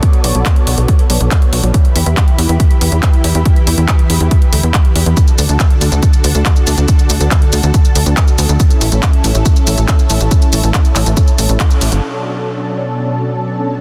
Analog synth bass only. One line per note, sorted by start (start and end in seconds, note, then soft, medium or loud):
0.24 0.33 B1 loud
0.35 0.44 B1 medium
0.67 0.76 B1 loud
0.78 0.87 B1 medium
1.10 1.19 B1 medium
1.21 1.29 B1 medium
1.53 1.62 B1 medium
1.63 1.72 B1 medium
1.96 2.04 E2 loud
2.06 2.15 E2 medium
2.38 2.47 E2 medium
2.49 2.58 E2 medium
2.81 2.90 E2 medium
2.92 3.01 E2 medium
3.24 3.33 E2 medium
3.35 3.44 E2 medium
3.67 3.76 E2 medium
3.78 3.87 E2 medium
4.10 4.19 E2 loud
4.21 4.29 E2 medium
4.53 4.62 D2 loud
4.63 4.72 E2 medium
4.95 5.04 E2 medium
5.06 5.15 E2 medium
5.38 5.47 D2 medium
5.49 5.58 D2 medium
5.81 5.90 D2 loud
5.92 6.01 D2 medium
6.24 6.33 D2 medium
6.35 6.44 D2 medium
6.67 6.76 D2 medium
6.78 6.87 D2 medium
7.10 7.19 D2 medium
7.21 7.29 D2 medium
7.53 7.62 D2 loud
7.63 7.72 D2 medium
7.96 8.04 D2 medium
8.06 8.15 D2 medium
8.38 8.47 D2 medium
8.49 8.58 D2 medium
8.81 8.90 A1 loud
8.92 9.01 A1 medium
9.24 9.33 A1 medium
9.35 9.44 A1 medium
9.67 9.76 A1 medium
9.78 9.87 A1 medium
10.10 10.19 A1 loud
10.20 10.29 A1 medium
10.53 10.62 A1 medium
10.63 10.72 A1 medium
10.95 11.04 A1 loud
11.06 11.15 A1 medium
11.38 11.47 A1 loud
11.49 11.58 A1 medium
11.81 11.90 A1 medium
11.92 12.01 G1 medium